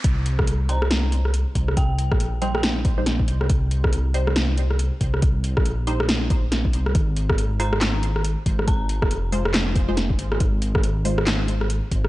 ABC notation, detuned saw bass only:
X:1
M:4/4
L:1/16
Q:"Swing 16ths" 1/4=139
K:Ablyd
V:1 name="Detuned saw bass" clef=bass
C,,12- C,, z C,,2- | C,,3 B,,,8- B,,,3 C,,2 | C,,12- C,, z C,,2- | C,,3 B,,,8- B,,,3 C,,2 |
A,,,12- A,,, z A,,,2- | A,,,3 F,,,8- F,,,3 A,,,2 | A,,,12- A,,, z A,,,2 |]